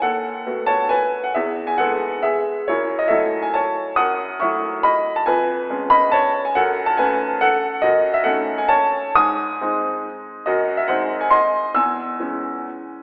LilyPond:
<<
  \new Staff \with { instrumentName = "Upright piano" } { \time 3/4 \key fis \dorian \tempo 4 = 138 <a' fis''>4. <cis'' a''>8 <b' gis''>8. fis''16 | <gis' e''>8. gis''16 <a' fis''>4 <gis' e''>4 | <e' cis''>8. dis''16 <a' e''>8. gis''16 <cis'' a''>4 | <fis'' dis'''>4 <e'' cis'''>4 <dis'' b''>8. a''16 |
<b' gis''>4. <dis'' b''>8 <cis'' a''>8. gis''16 | <a' fis''>8. a''16 <b' gis''>4 <a' fis''>4 | \key gis \phrygian <fis' dis''>8. e''16 <a' fis''>8. gis''16 <cis'' a''>4 | <gis'' dis'''>2. |
<fis' dis''>8. e''16 <bis' fis''>8. gis''16 <dis'' bis''>4 | <gis'' e'''>2. | }
  \new Staff \with { instrumentName = "Upright piano" } { \time 3/4 \key fis \dorian dis,4 <a b fis'>2 | e,4 <gis b gis'>2 | fis,4 <fis a e'>2 | fis,4 <fis a e'>2 |
eis,4 <gis b cis'>2 | fis,4 <a cis'>2 | \key gis \phrygian fis,4 <a cis' dis'>2 | gis,4 <gis bis dis'>2 |
fis,4 <gis bis dis'>2 | e,4 <e gis cis'>2 | }
>>